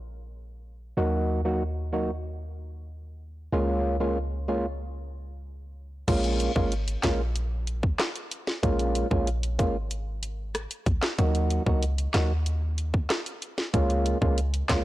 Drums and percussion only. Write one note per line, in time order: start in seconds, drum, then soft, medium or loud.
6.08 kick loud
6.08 closed hi-hat medium
6.08 crash loud
6.24 closed hi-hat medium
6.40 closed hi-hat medium
6.56 kick loud
6.72 closed hi-hat medium
6.88 closed hi-hat medium
7.03 kick loud
7.03 snare loud
7.03 clap medium
7.03 closed hi-hat medium
7.36 closed hi-hat medium
7.67 closed hi-hat medium
7.83 kick medium
7.99 cross-stick loud
7.99 snare loud
7.99 clap medium
7.99 closed hi-hat medium
8.16 closed hi-hat medium
8.31 closed hi-hat medium
8.47 snare medium
8.63 kick loud
8.63 closed hi-hat medium
8.79 closed hi-hat medium
8.95 closed hi-hat medium
9.11 kick medium
9.27 closed hi-hat medium
9.43 closed hi-hat medium
9.59 kick loud
9.59 closed hi-hat medium
9.91 closed hi-hat medium
10.23 closed hi-hat medium
10.55 cross-stick loud
10.55 closed hi-hat medium
10.71 closed hi-hat medium
10.86 kick loud
10.86 closed hi-hat medium
11.02 snare loud
11.02 clap medium
11.19 kick loud
11.19 closed hi-hat medium
11.35 closed hi-hat medium
11.50 closed hi-hat medium
11.66 kick medium
11.83 closed hi-hat medium
11.98 closed hi-hat medium
12.14 kick loud
12.14 snare loud
12.14 clap loud
12.14 closed hi-hat medium
12.46 closed hi-hat medium
12.78 closed hi-hat medium
12.94 kick loud
13.10 cross-stick loud
13.10 snare loud
13.10 clap medium
13.10 closed hi-hat medium
13.26 closed hi-hat medium
13.42 closed hi-hat medium
13.58 snare medium
13.74 kick loud
13.74 closed hi-hat medium
13.90 closed hi-hat medium
14.06 closed hi-hat medium
14.22 kick medium
14.38 closed hi-hat medium
14.54 closed hi-hat medium
14.69 kick loud
14.69 snare loud
14.69 clap medium
14.69 closed hi-hat medium